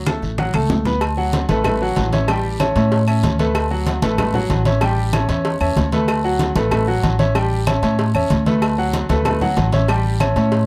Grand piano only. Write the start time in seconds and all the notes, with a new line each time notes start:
0.07 A3 A4 A5
0.39 F#3 F#4 F#5
0.55 A3 A4 A5
0.86 B3 B4 B5
1.17 F#3 F#4 F#5
1.50 A3 A4 B4
1.65 A3 A4 B4
1.82 F#3 F#4 F#5
2.13 C#4 C#5 E5
2.29 G3 G4 G5
2.60 C#4 C#5 E5
2.76 C#4 C#5 E5
3.08 C#4 C#5 E5
3.39 A3 A4 B4
3.71 F#3 F#4 F#5
4.02 A3 A4 B4
4.19 A3 A4 B4
4.34 F#3 F#4 F#5
4.66 C#4 C#5 E5
4.82 G3 G4 G5
5.14 C#4 C#5 E5
5.29 C#4 C#5 E5
5.61 C#4 C#5 E5
5.93 A3 A4 B4
6.24 F#3 F#4 F#5
6.56 A3 A4 B4
6.72 A3 A4 B4
6.88 F#3 F#4 F#5
7.19 C#4 C#5 E5
7.35 G3 G4 G5
7.67 C#4 C#5 E5
7.83 C#4 C#5 E5
8.15 C#4 C#5 E5
8.46 A3 A4 B4
8.78 F#3 F#4 F#5
9.10 A3 A4 B4
9.26 A3 A4 B4
9.41 F#3 F#4 F#5
9.73 C#4 C#5 E5
9.89 G3 G4 G5
10.21 C#4 C#5 E5
10.37 C#4 C#5 E5